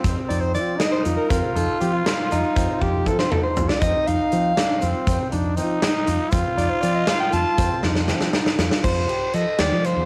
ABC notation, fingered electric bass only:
X:1
M:5/8
L:1/16
Q:1/4=119
K:Fmix
V:1 name="Fingered electric bass" clef=bass
F,, z F,,2 F,2 z2 F,, z | F,, z F,, z F,2 z2 F,, z | F,, z F,,2 F,2 z2 F,, z | F,, z F,, z F,2 z2 F,, z |
F,, z F,,2 F,2 z2 F,, z | F,, z F,, z F,2 z2 F,, z | F,, z F,,2 F,2 z2 F,, z | F,,2 z2 F, z E,, F,2 F,, |]